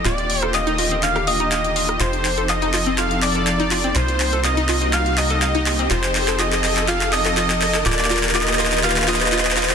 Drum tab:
HH |x-x-o-x-x-x-o-x-x-x-o-x-x-x-o-x-|x-x-o-x-x-x-o-x-x-x-o-x-x-x-o-x-|x-x-o-x-x-x-o-x-x-x-o-x-x-x-o-x-|x-x-o-x-x-x-o-x-x-x-o-x-x-x-o-x-|
CP |x-------x-------x-------x-------|x---x---x---x---x---x---x---x---|x---x---x---x---x---x---x---x---|x-x-x-x-x-x-x-x-x-x-x-x-x-x-x-x-|
SD |------r-----------r-----------r-|--------------------------------|--------------------------------|--------------------------------|

HH |x-x-o-x-x-x-o-x-x-x-o-x-x-x-o-x-|
CP |xxxxxxxxxxxxxxxxxxxxxxxxxxxxxxx-|
SD |--------------------------------|